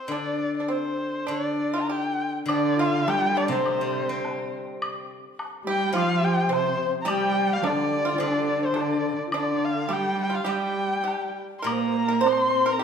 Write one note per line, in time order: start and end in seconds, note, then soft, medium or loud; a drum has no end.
0.00 0.13 C5 medium
0.08 1.27 D3 soft
0.08 0.58 D4 medium
0.08 0.54 D5 medium
0.57 0.68 D4 soft
0.57 0.73 D5 medium
0.68 1.23 C4 medium
0.68 1.32 C5 medium
1.27 2.44 D3 soft
1.27 1.69 D4 medium
1.31 1.82 D5 medium
1.74 1.87 F4 medium
1.81 1.93 A#5 medium
1.89 2.31 G4 medium
1.89 2.35 G5 medium
2.46 4.21 D3 soft
2.46 3.08 D3 medium
2.46 2.78 D4 medium
2.46 2.76 D4 medium
2.46 high woodblock medium
2.52 2.82 D5 medium
2.76 3.09 F4 medium
2.76 3.05 F4 medium
2.81 3.11 F5 medium
3.07 3.51 G3 medium
3.07 3.33 G4 medium
3.07 3.34 G4 medium
3.07 3.39 G5 medium
3.07 high woodblock soft
3.07 low woodblock soft
3.34 3.48 D4 medium
3.34 3.50 D4 medium
3.34 3.55 D5 medium
3.48 5.22 C3 medium
3.48 4.51 C3 medium
3.48 4.48 C4 medium
3.48 4.48 C5 medium
3.53 4.53 C5 medium
3.66 high woodblock soft
3.81 4.95 G3 soft
4.09 5.23 C4 soft
4.25 low woodblock soft
4.82 high woodblock medium
5.39 high woodblock soft
5.39 low woodblock soft
5.64 5.96 G3 medium
5.64 5.95 G4 medium
5.64 5.93 G4 medium
5.70 5.94 G5 medium
5.92 7.62 F3 medium
5.92 6.51 F3 medium
5.92 6.24 F4 medium
5.92 6.46 F4 medium
5.92 high woodblock soft
5.97 6.26 F5 medium
6.22 6.53 G4 medium
6.22 6.52 G5 medium
6.49 6.90 C3 medium
6.49 6.89 C4 medium
6.49 6.93 C5 medium
6.49 low woodblock soft
6.54 6.91 C5 medium
7.02 8.75 G3 medium
7.02 7.58 G4 medium
7.02 7.12 A#5 medium
7.06 7.65 G3 medium
7.06 7.65 G4 medium
7.06 7.55 G5 loud
7.06 high woodblock medium
7.53 7.68 F5 medium
7.63 8.18 D3 medium
7.63 8.03 D4 medium
7.63 8.12 D4 medium
7.63 8.21 D5 medium
7.63 high woodblock soft
7.63 low woodblock soft
8.05 8.18 F4 medium
8.12 8.21 F4 soft
8.18 8.71 D3 medium
8.18 9.90 D3 soft
8.18 8.71 D4 medium
8.18 8.25 F4 medium
8.18 high woodblock soft
8.23 8.60 D4 medium
8.23 8.67 D5 medium
8.61 8.78 C5 medium
8.65 8.82 C5 medium
8.74 9.15 D3 medium
8.74 9.14 D4 medium
8.74 9.18 D4 medium
8.74 low woodblock soft
8.80 9.20 D5 medium
9.26 9.34 F4 medium
9.32 9.90 D3 medium
9.32 9.43 C#4 medium
9.32 9.87 D4 medium
9.32 high woodblock medium
9.36 9.66 D5 medium
9.43 9.90 D4 medium
9.65 9.94 F5 medium
9.88 10.45 G3 medium
9.88 10.29 G4 medium
9.88 10.44 G4 medium
9.88 high woodblock soft
9.92 10.20 G5 medium
10.22 10.36 G5 medium
10.30 10.44 F4 medium
10.35 10.50 F5 medium
10.44 11.32 G3 medium
10.44 12.25 G3 soft
10.44 11.02 G4 medium
10.49 11.34 G4 medium
10.49 11.38 G5 medium
10.49 high woodblock soft
11.04 11.33 G4 medium
11.04 low woodblock soft
11.59 12.06 A#4 medium
11.59 11.68 C6 medium
11.64 12.84 A#2 medium
11.64 12.25 A#3 medium
11.64 11.74 A#4 medium
11.64 12.29 A#5 medium
11.64 high woodblock medium
11.73 11.82 C5 medium
11.81 11.89 A#4 medium
11.88 11.98 C5 medium
11.97 12.25 A#4 medium
12.08 12.20 A#4 medium
12.21 12.84 C4 medium
12.21 12.64 C5 medium
12.21 12.30 D5 medium
12.26 12.83 C5 medium
12.26 12.73 C6 medium
12.26 high woodblock soft
12.26 low woodblock soft
12.66 12.79 A#4 medium
12.72 12.84 A#5 medium
12.79 12.84 G4 medium